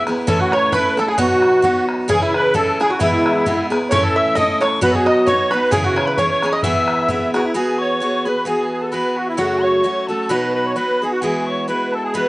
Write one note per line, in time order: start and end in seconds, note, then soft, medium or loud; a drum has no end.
0.07 0.28 B3 soft
0.07 0.27 E4 medium
0.07 0.27 G#4 medium
0.07 bodhran medium
0.27 0.73 A2 medium
0.27 0.73 E3 medium
0.27 0.71 A3 medium
0.27 0.72 C#4 medium
0.27 0.73 E4 medium
0.27 0.39 A4 medium
0.27 0.73 A4 medium
0.27 0.40 A4 medium
0.27 0.43 A5 medium
0.27 bodhran medium
0.40 0.52 F#4 medium
0.40 0.54 F#4 medium
0.40 0.56 F#5 medium
0.40 bodhran soft
0.52 0.72 C#5 loud
0.52 0.74 C#5 loud
0.52 0.76 C#6 medium
0.52 bodhran medium
0.72 0.98 A3 medium
0.72 0.98 C#4 medium
0.72 0.97 E4 medium
0.72 0.96 A4 medium
0.72 0.96 B4 loud
0.72 1.01 B5 medium
0.72 bodhran medium
0.97 1.17 A3 soft
0.97 1.18 C#4 soft
0.97 1.18 E4 medium
0.97 1.18 A4 medium
0.97 1.08 A4 medium
0.97 1.11 A5 medium
0.97 bodhran medium
1.08 1.18 G#4 medium
1.08 1.22 G#5 medium
1.18 1.64 B2 medium
1.18 1.61 F#3 medium
1.18 1.62 B3 medium
1.18 1.63 D#4 loud
1.18 1.60 F#4 medium
1.18 1.63 F#4 medium
1.18 1.85 F#4 medium
1.18 1.90 F#5 medium
1.18 bodhran medium
1.30 bodhran soft
1.42 bodhran medium
1.62 2.08 F#3 medium
1.62 2.08 B3 medium
1.62 2.09 D#4 medium
1.62 1.88 F#4 medium
1.62 2.09 F#4 medium
1.62 bodhran medium
1.89 bodhran medium
2.08 2.54 C#3 medium
2.08 2.53 E3 medium
2.08 2.53 C#4 loud
2.08 2.55 E4 medium
2.08 2.21 G#4 loud
2.08 2.54 G#4 loud
2.08 2.21 G#4 medium
2.08 2.24 G#5 medium
2.08 bodhran medium
2.22 2.33 E4 medium
2.22 2.53 E4 medium
2.22 2.37 E5 medium
2.22 bodhran soft
2.34 2.54 B4 loud
2.34 2.57 B5 medium
2.34 bodhran medium
2.54 2.79 E3 medium
2.54 2.80 C#4 medium
2.54 2.80 E4 medium
2.54 2.79 G#4 medium
2.54 2.78 A4 medium
2.54 2.79 A4 loud
2.54 2.84 A5 loud
2.54 bodhran medium
2.80 3.00 C#4 soft
2.80 3.00 E4 soft
2.80 3.00 G#4 soft
2.80 2.90 G#4 loud
2.80 3.02 G#5 loud
2.80 bodhran medium
2.90 2.99 F#4 medium
2.90 3.00 F#4 loud
2.99 3.45 E3 medium
2.99 3.45 G#3 medium
2.99 3.45 B3 medium
2.99 3.66 E4 medium
2.99 3.46 E4 medium
2.99 3.46 G#4 medium
2.99 3.68 E5 medium
2.99 bodhran medium
3.13 bodhran soft
3.26 bodhran medium
3.46 3.71 G#3 medium
3.46 3.71 B3 medium
3.46 3.70 E4 medium
3.46 3.69 G#4 medium
3.46 bodhran medium
3.70 3.91 B3 soft
3.70 3.91 E4 medium
3.70 3.91 G#4 medium
3.70 bodhran medium
3.90 4.36 A2 medium
3.90 4.36 E3 medium
3.90 4.34 A3 medium
3.90 4.35 C#4 medium
3.90 4.36 E4 medium
3.90 4.37 A4 medium
3.90 4.03 C#5 loud
3.90 4.04 C#5 medium
3.90 4.05 C#6 medium
3.90 bodhran medium
4.03 4.16 A4 medium
4.03 4.16 A4 loud
4.03 4.19 A5 medium
4.03 bodhran soft
4.15 4.36 E5 loud
4.15 4.35 E5 medium
4.15 4.39 E6 loud
4.35 4.61 A3 medium
4.35 4.61 C#4 medium
4.35 4.60 E4 medium
4.35 4.59 A4 medium
4.35 4.59 D#5 medium
4.35 4.62 D#5 loud
4.35 4.65 D#6 medium
4.35 bodhran medium
4.61 4.81 A3 soft
4.61 4.82 C#4 soft
4.61 4.82 E4 soft
4.61 4.81 A4 medium
4.61 4.70 C#5 loud
4.61 4.82 C#5 loud
4.61 4.83 C#6 medium
4.61 bodhran medium
4.81 5.27 B2 medium
4.81 5.25 F#3 medium
4.81 5.26 B3 loud
4.81 5.27 D#4 medium
4.81 5.27 F#4 loud
4.81 4.91 B4 loud
4.81 4.94 B4 medium
4.81 4.97 B5 medium
4.81 bodhran medium
4.91 5.07 G#4 medium
4.91 4.94 A4 medium
4.91 bodhran soft
4.95 5.06 G#4 medium
4.95 5.09 G#5 medium
5.06 5.25 D#5 medium
5.06 5.28 D#5 loud
5.06 5.26 D#6 medium
5.06 bodhran medium
5.26 5.52 F#3 medium
5.26 5.52 B3 medium
5.26 5.52 D#4 medium
5.26 5.50 F#4 medium
5.26 5.53 C#5 medium
5.26 5.51 C#5 medium
5.26 5.52 C#6 medium
5.26 bodhran medium
5.51 5.72 B3 soft
5.51 5.72 D#4 soft
5.51 5.72 F#4 soft
5.51 5.70 B4 medium
5.51 5.73 B4 loud
5.51 5.73 B5 medium
5.51 bodhran medium
5.71 6.17 C#3 medium
5.71 6.17 E3 medium
5.71 6.17 C#4 medium
5.71 6.19 E4 medium
5.71 5.83 G#4 medium
5.71 5.84 G#4 loud
5.71 6.19 G#4 medium
5.71 5.85 G#5 medium
5.71 bodhran medium
5.83 5.96 F#4 medium
5.83 5.98 F#4 medium
5.83 5.99 F#5 medium
5.83 bodhran soft
5.96 6.07 C#5 medium
5.96 6.08 C#5 medium
5.96 6.07 C#6 medium
5.96 bodhran medium
6.06 6.17 B4 medium
6.06 6.18 B4 medium
6.06 6.15 B5 medium
6.16 6.43 E3 medium
6.16 6.43 C#4 medium
6.16 6.43 E4 medium
6.16 6.42 G#4 medium
6.16 6.30 C#5 loud
6.16 6.51 C#5 medium
6.16 6.29 C#6 medium
6.16 bodhran medium
6.29 6.54 C#5 medium
6.29 6.49 C#6 medium
6.42 6.64 C#4 soft
6.42 6.63 E4 soft
6.42 6.63 G#4 medium
6.42 bodhran medium
6.49 6.63 D#5 medium
6.49 6.54 C#6 medium
6.49 6.64 D#6 medium
6.54 6.63 D#5 loud
6.63 7.08 E3 medium
6.63 7.08 B3 medium
6.63 7.09 E4 medium
6.63 7.10 G#4 loud
6.63 7.30 E5 medium
6.63 7.10 E6 medium
6.63 bodhran medium
6.76 bodhran soft
6.88 bodhran medium
7.08 7.34 E3 medium
7.08 7.34 B3 medium
7.08 7.33 E4 medium
7.08 7.33 G#4 medium
7.08 bodhran medium
7.34 7.54 B3 soft
7.34 7.55 E4 medium
7.34 7.45 F#4 medium
7.34 7.54 G#4 medium
7.34 7.44 F#5 medium
7.34 bodhran medium
7.44 7.56 E4 medium
7.44 7.53 E5 medium
7.54 7.99 E3 medium
7.54 8.00 B3 medium
7.54 8.01 F#4 medium
7.54 7.79 G#4 medium
7.54 8.01 G#4 medium
7.54 7.80 G#5 medium
7.78 8.28 C#5 medium
7.78 8.27 C#6 medium
8.00 8.26 E3 medium
8.00 8.26 B3 medium
8.00 8.25 F#4 medium
8.00 8.24 G#4 medium
8.25 8.45 B3 soft
8.25 8.45 F#4 soft
8.25 8.46 G#4 soft
8.25 8.47 B4 medium
8.25 8.46 B5 medium
8.45 8.91 E3 medium
8.45 8.91 B3 medium
8.45 8.92 F#4 medium
8.45 8.70 G#4 medium
8.45 8.93 G#4 medium
8.45 8.80 G#5 medium
8.72 8.82 G#4 medium
8.80 8.93 A4 medium
8.80 8.85 A5 medium
8.91 9.37 E3 soft
8.91 9.38 B3 medium
8.91 9.38 F#4 medium
8.91 9.38 G#4 medium
8.91 9.18 B4 medium
8.91 9.18 B5 medium
9.17 9.28 F#4 medium
9.17 9.28 F#5 medium
9.27 9.39 E4 medium
9.27 9.37 E5 medium
9.37 9.84 F#2 medium
9.37 9.84 C#3 medium
9.37 9.83 F#3 medium
9.37 9.83 A3 medium
9.37 9.83 C#4 medium
9.37 9.64 F#4 medium
9.37 9.85 F#4 medium
9.37 9.64 F#5 medium
9.62 10.06 C#5 medium
9.62 10.09 C#6 medium
9.83 10.09 F#3 medium
9.83 10.09 A3 medium
9.83 10.08 C#4 medium
9.83 10.07 F#4 medium
10.07 10.29 F#3 soft
10.07 10.30 A3 soft
10.07 10.30 C#4 soft
10.07 10.29 F#4 soft
10.07 10.30 A4 medium
10.07 10.28 A5 medium
10.28 10.76 B2 medium
10.28 10.75 F#3 medium
10.28 10.76 B3 medium
10.28 10.76 D#4 medium
10.28 10.77 F#4 medium
10.28 10.53 B4 medium
10.28 10.53 B5 medium
10.53 10.66 B4 medium
10.53 10.73 B5 medium
10.65 10.76 C#5 medium
10.75 11.01 F#3 medium
10.75 11.02 B3 medium
10.75 11.02 D#4 medium
10.75 11.01 F#4 medium
10.75 11.02 B4 medium
10.75 11.09 B5 medium
11.02 11.22 B3 soft
11.02 11.23 D#4 soft
11.02 11.22 F#4 soft
11.02 11.12 G#4 medium
11.10 11.23 F#4 medium
11.10 11.23 F#5 medium
11.21 11.68 E3 medium
11.21 11.67 G#3 medium
11.21 11.67 B3 medium
11.21 11.67 E4 medium
11.21 11.69 F#4 medium
11.21 11.49 G#4 medium
11.21 11.47 G#5 medium
11.46 11.67 C#5 medium
11.46 11.67 C#6 medium
11.67 12.13 G#3 medium
11.67 12.13 B3 medium
11.67 12.14 E4 medium
11.67 12.14 F#4 medium
11.67 11.94 B4 medium
11.67 11.94 B5 medium
11.92 12.04 A4 medium
11.92 12.15 A5 medium
12.04 12.14 G#4 medium
12.13 12.29 E3 medium
12.13 12.29 G#3 medium
12.13 12.29 B3 medium
12.13 12.29 E4 medium
12.13 12.29 F#4 medium
12.13 12.29 B4 loud
12.13 12.29 B5 medium